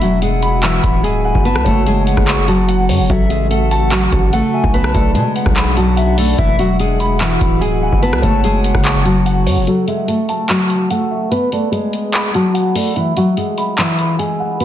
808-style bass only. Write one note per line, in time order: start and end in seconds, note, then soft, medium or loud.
0.00 0.80 E1 loud
0.84 1.33 D1 loud
1.35 1.57 F#1 loud
1.56 1.65 C#2 loud
1.66 2.15 F#1 loud
2.17 2.91 F#1 loud
2.89 3.01 F#2 loud
2.99 3.09 F#1 loud
3.10 4.08 A1 loud
4.12 4.42 A1 loud
4.64 4.93 B1 loud
4.94 5.17 B1 loud
5.15 5.25 B2 medium
5.46 6.35 B1 loud
6.38 7.37 E1 loud
7.41 7.90 D1 loud
7.92 8.15 F#1 loud
8.13 8.23 C#2 medium
8.23 8.73 F#1 loud
8.75 9.48 F#1 loud
9.47 9.58 F#2 loud
9.57 9.67 F#1 loud